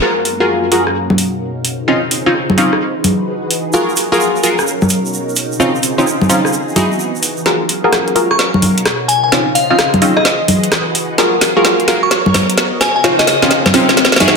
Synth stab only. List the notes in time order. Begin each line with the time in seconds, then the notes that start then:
0.02 F4 F#4 G#4 A#4
0.40 F4 F#4 G#4 A#4
0.72 F4 F#4 G#4 A#4
1.88 C4 C#4 D#4 F4
2.26 C4 C#4 D#4 F4
2.58 C4 C#4 D#4 F4
3.74 F4 F#4 G#4 A#4
4.12 F4 F#4 G#4 A#4
4.43 F4 F#4 G#4 A#4
5.60 C4 C#4 D#4 F4
5.98 C4 C#4 D#4 F4
6.29 C4 C#4 D#4 F4
6.76 D#4 E4 F#4 G#4
7.46 F4 F#4 G#4 A#4
7.84 F4 F#4 G#4 A#4
8.16 F4 F#4 G#4 A#4
9.32 C4 C#4 D#4 F4
9.70 C4 C#4 D#4 F4
10.02 C4 C#4 D#4 F4
11.18 F4 F#4 G#4 A#4
11.57 F4 F#4 G#4 A#4
11.88 F4 F#4 G#4 A#4
13.04 C4 C#4 D#4 F4
13.42 C4 C#4 D#4 F4
13.74 C4 C#4 D#4 F4
14.20 D#4 E4 F#4 G#4